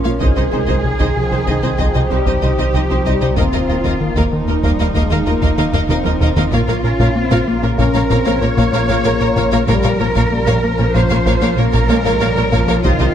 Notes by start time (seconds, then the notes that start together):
Already playing: A#1 F3 C#4 F4 A#4
0.04 A#1 A#3 F4 C#5 F5
0.19 C2 C3 D#3 D#4 G#4 C5 D#5 G5, taiko
0.36 C2 C4 D#4 C5 D#5
0.51 C2 G#3 C4 D#4 C5
0.67 C2 C3 D#4 C5 D#5, taiko
0.84 C3 D#3
0.99 C2 C3 D#4 C5 D#5, taiko
1.16 C3 F3
1.31 C2 D#3 D#4 C5
1.47 C2 C3 D#3 D#4 C5 D#5, taiko
1.63 C2 C4 D#4 C5 D#5
1.79 C2 C3 F3 D#4 C5 D#5, taiko
1.95 C2 C3 G3 D#4 C5 D#5
2.10 C2 G3 C4 D#4 G4 C5
2.26 C2 C3 D#4 C5 D#5, taiko
2.42 C2 C3 D#3 G3 D#4 C5 D#5
2.58 C2 C3 D#4 C5 D#5
2.74 C2 F3 C4 D#4 C5 D#5
2.90 C2 C4 D#4 C5
3.05 C2 C3 G3 D#4 C5 D#5, taiko
3.21 C2 C3 G3 D#4 C5 D#5
3.36 D#1 D#2 D#3 F3 A#3 C4 F4 A#4 D#5 F5, taiko
3.53 D#2 A#3 F4 A#4 D#5 F5
3.69 D#2 A#3 F4 A#4 D#5
3.84 D#2 D#3 A#3 A#4 D#5 F5, taiko
4.00 D#3 A#3
4.15 D#2 D#3 A#3 A#4 D#5 F5, taiko
4.31 D#3 D#4
4.47 D#2 A#3 A#4 D#5
4.63 D#2 D#3 G3 A#3 A#4 D#5 F5, taiko
4.78 D#2 A#3 F4 A#4 D#5 F5
4.94 D#2 D#3 G#3 A#3 A#4 D#5 F5, taiko
5.10 D#2 D#3 A#3 D#4 A#4 D#5 F5
5.26 D#2 A#3 F4 A#4 D#5
5.42 D#2 D#3 A#3 A#4 D#5 F5, taiko
5.57 D#2 D#3 A#3 D#4 A#4 D#5 F5
5.73 D#2 D#3 A#3 A#4 D#5 F5, taiko low-mid
5.88 D#2 A#3 C4 F4 A#4 D#5 F5, taiko mid
6.04 D#2 A#3 F4 A#4 D#5, taiko high
6.21 D#2 D#3 A#3 A#4 D#5 F5, taiko mid
6.36 D#2 D#3 A#3 D#4 A#4 D#5 F5, taiko low
6.52 A#1 A#2 C#3 F3 A#3 F4 A#4 C#5 F5, taiko
6.68 A#1 A#2 A#3 A#4 C#5 F5
6.83 A#1 A#2 A#3 C#4 A#4 C#5
6.99 A#1 A#2 A#3 A#4 C#5 F5, taiko
7.16 A#3 C4
7.31 A#1 A#2 A#3 A#4 C#5 F5, taiko
7.47 A#3
7.62 A#1 A#2 A#3 C#4 A#4 C#5
7.78 A#1 A#2 A#3 C#4 A#4 C#5 F5, taiko
7.94 A#1 A#2 A#3 A#4 C#5 F5
8.10 A#1 A#2 A#3 C4 A#4 C#5 F5, taiko
8.25 A#1 A#3 F4 A#4 C#5 F5
8.41 A#1 A#2 A#3 A#4 C#5
8.57 A#1 A#2 A#3 A#4 C#5 F5, taiko
8.73 A#1 A#3 F4 A#4 C#5 F5
8.88 A#1 A#2 A#3 A#4 C#5 F5
9.04 A#1 A#2 A#3 A#4 C#5 F5
9.20 A#1 A#2 A#3 A#4 C#5
9.36 A#1 A#2 A#3 A#4 C#5 F5, taiko
9.52 A#1 A#3 F4 A#4 C#5 F5
9.67 A#1 A#2 F3 G3 A#3 C#4 F4 A#4 C#5 F5, taiko
9.83 A#1 A#2 A#3 A#4 C#5 F5
10.00 A#1 A#2 F3 A#3 A#4 C#5
10.15 A#1 A#2 A#3 A#4 C#5 F5, taiko
10.32 G3 A#3
10.47 A#1 A#2 A#3 A#4 C#5 F5, taiko
10.63 F3 A#3
10.79 A#1 A#2 A#3 C#4 A#4 C#5
10.94 A#1 A#2 A#3 A#4 C5 C#5 F5, taiko
11.10 A#1 A#2 A#3 A#4 C#5 F5
11.25 A#1 A#2 A#3 A#4 C#5 F5, taiko
11.41 A#1 A#3 F4 A#4 C#5 F5
11.57 A#1 A#2 A#3 A#4 C#5
11.73 A#1 A#2 A#3 A#4 C#5 F5, taiko
11.88 A#1 G#3 A#3 F4 A#4 C#5 F5
12.05 A#1 A#2 A#3 A#4 C#5 F5
12.20 A#1 A#2 G3 A#3 A#4 C#5 F5
12.36 A#1 A#2 A#3 A#4 C#5
12.52 A#1 A#2 F3 A#3 A#4 C#5 F5, taiko
12.67 A#1 A#3 F4 A#4 C#5 F5
12.83 C2 C3 D#3 C4 D#4 F4 G4 C5 D#5, taiko
12.99 C2 C4 D#4 G4 C5 D#5